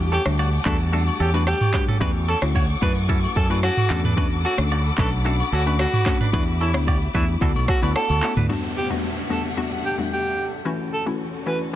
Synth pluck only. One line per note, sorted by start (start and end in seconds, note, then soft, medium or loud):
0.25 0.46 G3 medium
0.25 0.46 A3 medium
0.25 0.46 D4 medium
0.25 0.46 F#4 medium
0.65 0.86 G3 medium
0.65 0.86 A3 medium
0.65 0.86 D4 medium
0.65 0.86 F#4 medium
0.92 1.13 G3 loud
0.92 1.13 A3 medium
0.92 1.13 D4 medium
0.92 1.13 F#4 loud
1.33 1.54 G3 medium
1.33 1.54 A3 medium
1.33 1.54 D4 medium
1.33 1.54 F#4 medium
1.73 1.94 G3 medium
1.73 1.94 A3 medium
1.73 1.94 D4 medium
1.73 1.94 F#4 medium
2.00 2.21 A3 loud
2.00 2.21 C#4 medium
2.00 2.21 E4 medium
2.00 2.21 F#4 loud
2.42 2.62 A3 medium
2.42 2.62 C#4 medium
2.42 2.62 E4 medium
2.42 2.62 F#4 medium
2.82 3.02 A3 medium
2.82 3.02 C#4 medium
2.82 3.03 E4 medium
2.82 3.03 F#4 medium
3.08 3.29 A3 medium
3.08 3.29 C#4 medium
3.08 3.30 E4 medium
3.08 3.30 F#4 loud
3.50 3.70 A3 medium
3.50 3.70 C#4 medium
3.50 3.70 E4 medium
3.50 3.70 F#4 medium
3.90 4.11 A3 medium
3.90 4.11 C#4 medium
3.90 4.11 D4 medium
3.90 4.11 F#4 medium
4.17 4.38 A3 loud
4.17 4.38 C#4 medium
4.17 4.38 D4 medium
4.17 4.38 F#4 loud
4.58 4.78 A3 medium
4.58 4.78 C#4 medium
4.58 4.78 D4 medium
4.58 4.78 F#4 medium
4.98 5.18 A3 medium
4.98 5.19 C#4 medium
4.98 5.19 D4 medium
4.98 5.19 F#4 medium
5.25 5.46 A3 medium
5.25 5.46 C#4 medium
5.25 5.46 D4 medium
5.25 5.46 F#4 loud
5.66 5.86 A3 medium
5.66 5.86 C#4 medium
5.66 5.86 D4 medium
5.66 5.87 F#4 medium
6.06 6.27 A3 medium
6.06 6.27 C#4 medium
6.06 6.27 D4 medium
6.06 6.27 F#4 medium
6.33 6.54 A3 medium
6.33 6.54 B3 medium
6.33 6.54 D4 medium
6.33 6.54 E4 loud
6.74 6.94 A3 medium
6.74 6.94 B3 medium
6.74 6.94 D4 medium
6.74 6.94 E4 medium
7.14 7.35 A3 medium
7.14 7.35 B3 medium
7.14 7.35 D4 medium
7.14 7.35 E4 medium
7.41 7.62 A3 medium
7.41 7.62 B3 medium
7.41 7.62 E4 medium
7.41 7.62 F#4 loud
7.82 8.02 A3 medium
7.82 8.02 B3 medium
7.82 8.03 E4 medium
7.82 8.03 F#4 medium
8.22 8.43 A3 medium
8.22 8.43 B3 medium
8.22 8.43 E4 medium
8.22 8.43 F#4 medium
8.49 8.70 E2 medium
8.49 8.70 G3 medium
8.49 8.70 A3 medium
8.49 8.70 B3 medium
8.49 8.70 D4 medium
8.49 8.70 F#4 loud
8.90 9.10 E2 medium
8.90 9.10 G3 medium
8.90 9.11 A3 medium
8.90 9.11 B3 medium
8.90 9.11 D4 medium
8.90 9.11 F#4 medium
9.30 9.51 E2 medium
9.30 9.51 G3 medium
9.30 9.51 A3 medium
9.30 9.51 B3 medium
9.30 9.51 D4 medium
9.30 9.51 F#4 medium
9.57 9.78 E2 medium
9.57 9.78 G3 medium
9.57 9.78 A3 medium
9.57 9.78 B3 medium
9.57 9.78 D4 medium
9.57 9.78 F#4 loud
9.98 10.18 E2 medium
9.98 10.19 G3 medium
9.98 10.19 A3 medium
9.98 10.19 B3 medium
9.98 10.19 D4 medium
9.98 10.19 F#4 medium
10.65 10.86 E3 medium
10.65 10.86 A3 medium
10.65 10.86 C#4 medium
10.65 10.86 E4 medium
10.65 10.86 F#4 loud
11.06 11.27 E3 medium
11.06 11.27 A3 medium
11.06 11.27 C#4 medium
11.06 11.27 E4 medium
11.06 11.27 F#4 medium
11.46 11.67 E3 medium
11.46 11.67 A3 medium
11.46 11.67 C#4 medium
11.46 11.67 E4 medium
11.46 11.67 F#4 medium